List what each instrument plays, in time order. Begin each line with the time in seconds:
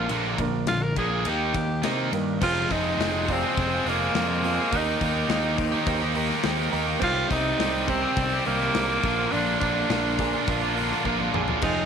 Already playing: grand piano D4 F4 A#4
0.09 picked electric bass A#1, overdriven electric guitar A#2 D3 A#3, ride
0.38 picked electric bass A#1, overdriven electric guitar A#2 D3, grand piano D4 F4 A#4, kick, ride
0.67 picked electric bass A#1, overdriven electric guitar A#2 D3, tenor saxophone F4, snare, ride
0.83 tenor saxophone A#4
0.96 picked electric bass A#1, overdriven electric guitar A#2 D3 A#3, grand piano D4 F4 A#4, tenor saxophone G#4, kick, ride
1.25 picked electric bass D#2, overdriven electric guitar D#3 A#3 D#4, grand piano D#4 G4 A#4, ride
1.29 tenor saxophone G4
1.54 picked electric bass D#2, overdriven electric guitar D#3 A#3, grand piano D#4 G4 A#4, kick, ride
1.83 picked electric bass C3, overdriven electric guitar D#3 A#3 D#4, grand piano D#4 G4 C5, snare, ride
2.12 picked electric bass G2, overdriven electric guitar D#3 A#3, grand piano D#4 G4 A#4, ride
2.41 picked electric bass F1, overdriven electric guitar F2 C3 F3 G#3 C4 F4, grand piano C4 F4 G#4 C5, tenor saxophone F4, distorted electric guitar G#4, kick, crash
2.70 picked electric bass F1, overdriven electric guitar F3 G#3 C4 F4, grand piano C4 F4 G#4 C5, tenor saxophone D#4, distorted electric guitar G#4, kick, open hi-hat
2.98 picked electric bass F1, overdriven electric guitar F2 C3 F3 G#3 C4 F4, grand piano C4 F4 G#4 C5, distorted electric guitar G#4, snare, open hi-hat
3.29 overdriven electric guitar F3 G#3 C4 F4, grand piano C4 F4 G#4 D5, tenor saxophone C4, muted distorted electric guitar stroke, kick, open hi-hat
3.42 overdriven electric guitar F3 G#3 C4 F4, distorted electric guitar G#4
3.57 picked electric bass F1, grand piano C4 F4 G#4 C5, kick, open hi-hat
3.70 overdriven electric guitar C4 F4, distorted electric guitar G#4
3.75 overdriven electric guitar F3 G#3
3.86 picked electric bass F1, overdriven electric guitar F3 G#3 C4 F4, tenor saxophone A#3, grand piano C4 F4 G#4 C5, distorted electric guitar G#4, open hi-hat
4.01 overdriven electric guitar F3 G#3 C4 F4
4.14 overdriven electric guitar F2 C3 F3 G#3 C4 F4, picked electric bass F2, grand piano C4 F4 G#4 D5, distorted electric guitar G#4, snare, open hi-hat
4.26 overdriven electric guitar G#3 C4 F4, distorted electric guitar G#4
4.31 overdriven electric guitar F3
4.43 overdriven electric guitar F3 G#3 C4 F4, grand piano C4 F4 G#4 C5, distorted electric guitar G#4, open hi-hat
4.55 overdriven electric guitar F4, distorted electric guitar G#4
4.59 overdriven electric guitar F3 G#3 C4
4.72 picked electric bass D#2, overdriven electric guitar D#3 A#3 D#4 G4, grand piano A#3 D#4 G4 A#4, kick, open hi-hat
4.77 tenor saxophone D#4
5.01 picked electric bass D#2, overdriven electric guitar D#3 A#3 D#4 G4, grand piano A#3 D#4 G4 A#4, kick, open hi-hat
5.05 tenor saxophone D#4
5.29 picked electric bass D#2, overdriven electric guitar D#3 A#3 D#4 G4, grand piano A#3 D#4 G4 C5, snare, open hi-hat
5.57 overdriven electric guitar D#3 A#3 D#4 G4, grand piano A#3 D#4 G4 C5, muted distorted electric guitar stroke, kick, open hi-hat
5.71 overdriven electric guitar A#3 D#4 G4
5.87 picked electric bass D#2, grand piano A#3 D#4 G4 C5, kick, open hi-hat
6.01 overdriven electric guitar A#3 D#4 G4
6.14 overdriven electric guitar D#3 A#3 D#4 G4, grand piano A#3 D#4 G4 A#4, open hi-hat
6.28 overdriven electric guitar A#3 D#4 G4, snare
6.43 picked electric bass D#2, overdriven electric guitar D#3 A#3 D#4 G4, grand piano A#3 D#4 G4 C5, snare, open hi-hat
6.58 overdriven electric guitar A#3 D#4 G4
6.72 picked electric bass D#2, overdriven electric guitar D#3 A#3 D#4 G4, grand piano A#3 D#4 G4 A#4, open hi-hat
6.86 overdriven electric guitar A#3 D#4 G4
6.99 picked electric bass C2, overdriven electric guitar C3 D#3 G3 C4 G4, grand piano C4 D#4 G4 C5, kick, crash
7.04 tenor saxophone F4
7.29 picked electric bass C2, overdriven electric guitar D#3 G3 C4 G4, grand piano C4 D#4 G4 C5, tenor saxophone D#4, kick, open hi-hat
7.59 picked electric bass C2, overdriven electric guitar C3 D#3 G3 C4 G4, grand piano C4 D#4 G4 C5, snare, open hi-hat
7.87 overdriven electric guitar D#3 G3 C4 G4, grand piano C4 D#4 G4 C5, tenor saxophone C4, muted distorted electric guitar stroke, kick, open hi-hat
8.02 overdriven electric guitar G3 C4 G4
8.16 picked electric bass C2, grand piano C4 D#4 G4 C5, kick, open hi-hat
8.33 overdriven electric guitar G3 C4 G4
8.45 picked electric bass C2, overdriven electric guitar D#3 G3 C4 G4, tenor saxophone A#3, grand piano C4 D#4 G4 A#4, open hi-hat
8.60 overdriven electric guitar G3 C4 G4, snare
8.74 picked electric bass C2, overdriven electric guitar C3 D#3 G3 C4 G4, grand piano C4 D#4 G4 A#4, snare, open hi-hat
8.89 overdriven electric guitar G3 C4 G4
9.03 picked electric bass A#1, overdriven electric guitar A#2 D3 A#3 D4 F4, grand piano A#3 D4 F4 A#4, kick, open hi-hat
9.18 overdriven electric guitar A#3 D4 F4
9.32 picked electric bass A#1, overdriven electric guitar A#2 D3 A#3 D4 F4, tenor saxophone D4, open hi-hat
9.60 picked electric bass A#1, overdriven electric guitar D3 A#3 D4, grand piano A#3 D4 F4 A#4, tenor saxophone D4, kick, open hi-hat
9.64 overdriven electric guitar F4
9.89 picked electric bass A#1, overdriven electric guitar A#2 D3 A#3 D4 F4, grand piano A#3 D4 F4 A#4, snare, open hi-hat
10.18 overdriven electric guitar D3 A#3 D4 F4, grand piano A#3 D4 F4 G#4, muted distorted electric guitar stroke, kick, open hi-hat
10.33 overdriven electric guitar A#3 D4 F4
10.47 picked electric bass A#1, grand piano A#3 D4 F4 A#4, kick, open hi-hat
10.64 overdriven electric guitar A#3 D4 F4
10.75 distorted electric guitar D3, grand piano A#3 D4 F4 A#4, open hi-hat
10.80 overdriven electric guitar D3 A#3 D4 F4
10.91 overdriven electric guitar A#3 D4 F4, snare
11.04 picked electric bass A#1, overdriven electric guitar A#2 D3 A#3 D4 F4, grand piano A#3 D4 F4 A#4, kick
11.19 overdriven electric guitar A#3 D4 F4, mid tom
11.33 picked electric bass A#1, overdriven electric guitar D3 A#3 D4 F4, grand piano A#3 D4 F4 G#4, mid tom
11.48 overdriven electric guitar A#3 D4 F4, floor tom
11.61 picked electric bass F1, overdriven electric guitar F2 C3 F3 G#3 C4 F4, grand piano G#3 C4 F4 G#4, tenor saxophone D#4, kick, crash